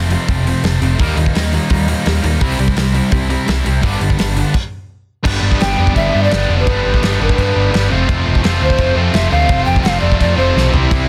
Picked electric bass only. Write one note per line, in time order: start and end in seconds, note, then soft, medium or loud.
0.00 0.14 F1 medium
0.29 0.50 F1 medium
0.64 0.75 F1 medium
0.82 0.92 F1 loud
1.00 1.11 D#2 medium
1.16 1.27 D#2 medium
1.35 1.56 D#2 medium
1.71 1.92 D#2 medium
2.07 2.17 D#2 medium
2.24 2.35 D#2 medium
2.42 2.52 C2 medium
2.59 2.70 C2 medium
2.76 2.98 C2 medium
3.13 3.34 C2 medium
3.49 3.59 C2 medium
3.66 3.77 C2 medium
3.84 3.94 G1 medium
4.01 4.12 G1 medium
4.19 4.41 G1 medium
5.25 5.37 G1 medium
5.42 5.54 G1 medium
5.61 5.72 G1 medium
5.78 5.89 F2 medium
5.96 6.07 G1 medium
6.15 6.26 G2 medium
6.32 6.43 G1 medium
6.50 6.61 F1 medium
6.67 6.78 G1 medium
6.85 6.96 G1 medium
7.03 7.14 G1 medium
7.21 7.32 G1 medium
7.38 7.49 G2 medium
7.56 7.67 G1 medium
7.74 7.85 G1 medium
7.92 8.03 F1 loud
8.09 8.20 F1 medium
8.28 8.38 F1 loud
8.45 8.55 F1 loud
8.62 8.73 D2 medium
8.79 8.90 F1 medium
8.96 9.07 F2 medium
9.14 9.25 F1 medium
9.32 9.43 D2 loud
9.50 9.61 F1 loud
9.67 9.79 F1 medium
9.84 9.95 F1 loud
10.02 10.14 F1 loud
10.21 10.32 F2 medium
10.38 10.49 F1 medium
10.56 10.67 B1 medium
10.74 10.85 C2 loud
10.92 11.03 C2 medium